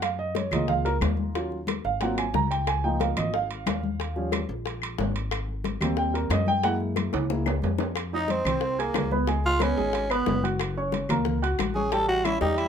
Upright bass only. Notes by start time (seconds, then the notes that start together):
Already playing: F#2
0.52 C#2
1.01 D#2
1.85 G#1
2.34 C#2
3.17 G#1
3.67 D#2
4.49 A#1
4.99 G#1
5.81 D#2
6.30 F#2
7.14 C#2
7.63 F2
8.45 C2
8.95 C#2
9.77 G#1
10.27 F#1
11.10 C#2
11.59 A1
12.41 E2